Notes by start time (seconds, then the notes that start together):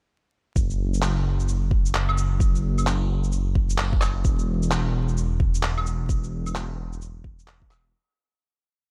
0.56 F#1, kick, shaker
0.70 shaker
0.94 shaker
1.02 clap, shaker
1.40 shaker
1.48 shaker
1.71 kick
1.86 shaker
1.94 clap
2.09 claves
2.18 shaker
2.40 kick, shaker
2.55 shaker
2.78 claves, shaker
2.87 clap, shaker
3.24 shaker
3.32 shaker
3.55 kick
3.70 shaker
3.78 clap
3.93 kick
4.01 clap, claves, shaker
4.25 E1, kick, shaker
4.39 shaker
4.63 shaker
4.71 clap, shaker
5.08 shaker
5.17 shaker
5.40 kick
5.54 shaker
5.63 clap
5.78 claves
5.86 shaker
6.09 kick, shaker
6.24 shaker
6.46 claves, shaker
6.55 clap, shaker
6.93 shaker
7.02 shaker
7.24 kick
7.39 shaker
7.48 clap
7.62 kick
7.71 clap, claves, shaker